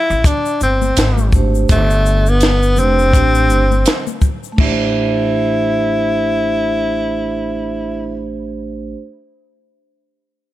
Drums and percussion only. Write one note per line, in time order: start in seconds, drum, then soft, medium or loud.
0.10 shaker soft
0.24 kick loud
0.24 closed hi-hat medium
0.24 shaker medium
0.46 shaker soft
0.61 shaker soft
0.61 shaker medium
0.82 high conga medium
0.82 shaker soft
0.97 snare loud
0.97 closed hi-hat medium
0.97 shaker medium
1.18 high conga medium
1.18 shaker soft
1.32 kick medium
1.32 low conga medium
1.32 shaker soft
1.55 shaker soft
1.69 kick loud
1.69 closed hi-hat medium
1.69 shaker medium
1.90 shaker soft
2.06 shaker soft
2.06 shaker medium
2.26 shaker soft
2.40 snare loud
2.40 closed hi-hat medium
2.40 shaker medium
2.63 shaker soft
2.76 low conga medium
2.76 shaker soft
2.78 shaker medium
2.99 shaker soft
3.13 kick medium
3.13 closed hi-hat medium
3.13 shaker medium
3.35 shaker medium
3.50 shaker soft
3.50 shaker medium
3.71 high conga medium
3.71 shaker soft
3.85 snare loud
3.85 closed hi-hat medium
3.85 shaker medium
4.07 high conga medium
4.07 shaker soft
4.22 kick medium
4.22 low conga medium
4.22 shaker soft
4.44 shaker soft
4.58 kick loud
4.58 crash medium
4.58 high conga medium